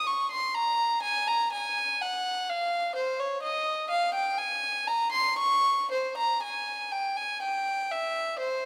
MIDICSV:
0, 0, Header, 1, 2, 480
1, 0, Start_track
1, 0, Tempo, 961538
1, 32, Time_signature, 3, 2, 24, 8
1, 2432, Tempo, 1022147
1, 3392, Tempo, 974026
1, 4248, End_track
2, 0, Start_track
2, 0, Title_t, "Violin"
2, 0, Program_c, 0, 40
2, 35, Note_on_c, 0, 85, 72
2, 155, Note_on_c, 0, 84, 81
2, 156, Note_off_c, 0, 85, 0
2, 273, Note_on_c, 0, 82, 85
2, 274, Note_off_c, 0, 84, 0
2, 512, Note_on_c, 0, 80, 89
2, 517, Note_off_c, 0, 82, 0
2, 633, Note_off_c, 0, 80, 0
2, 636, Note_on_c, 0, 82, 87
2, 758, Note_off_c, 0, 82, 0
2, 760, Note_on_c, 0, 80, 88
2, 997, Note_off_c, 0, 80, 0
2, 1004, Note_on_c, 0, 78, 86
2, 1241, Note_off_c, 0, 78, 0
2, 1245, Note_on_c, 0, 77, 90
2, 1477, Note_on_c, 0, 72, 77
2, 1478, Note_off_c, 0, 77, 0
2, 1592, Note_off_c, 0, 72, 0
2, 1596, Note_on_c, 0, 73, 72
2, 1710, Note_on_c, 0, 75, 81
2, 1714, Note_off_c, 0, 73, 0
2, 1944, Note_off_c, 0, 75, 0
2, 1949, Note_on_c, 0, 77, 86
2, 2066, Note_off_c, 0, 77, 0
2, 2068, Note_on_c, 0, 79, 82
2, 2186, Note_off_c, 0, 79, 0
2, 2188, Note_on_c, 0, 80, 88
2, 2432, Note_off_c, 0, 80, 0
2, 2434, Note_on_c, 0, 82, 84
2, 2549, Note_on_c, 0, 84, 91
2, 2551, Note_off_c, 0, 82, 0
2, 2668, Note_off_c, 0, 84, 0
2, 2674, Note_on_c, 0, 85, 97
2, 2917, Note_off_c, 0, 85, 0
2, 2922, Note_on_c, 0, 72, 78
2, 3042, Note_off_c, 0, 72, 0
2, 3045, Note_on_c, 0, 82, 79
2, 3160, Note_off_c, 0, 82, 0
2, 3162, Note_on_c, 0, 80, 76
2, 3388, Note_off_c, 0, 80, 0
2, 3394, Note_on_c, 0, 79, 76
2, 3513, Note_off_c, 0, 79, 0
2, 3517, Note_on_c, 0, 80, 83
2, 3635, Note_off_c, 0, 80, 0
2, 3643, Note_on_c, 0, 79, 85
2, 3875, Note_off_c, 0, 79, 0
2, 3882, Note_on_c, 0, 76, 86
2, 4118, Note_off_c, 0, 76, 0
2, 4119, Note_on_c, 0, 72, 81
2, 4248, Note_off_c, 0, 72, 0
2, 4248, End_track
0, 0, End_of_file